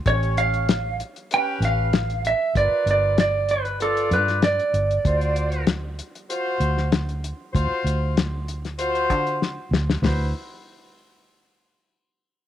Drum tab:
HH |xxxxx-xxx-x-xxx-|x-x-x-xxxxxxxxxx|xxxxx-xxx-x-xxx-|x-x-x-xxxxxx----|
SD |----o-----o-o---|----o------oo---|----o------oo---|----o--o----o-oo|
FT |----------------|----------------|----------------|----------------|
BD |o---------------|o---------------|o---------------|o---------o-----|

HH |o---------------|
SD |o---------------|
FT |o---------------|
BD |----------------|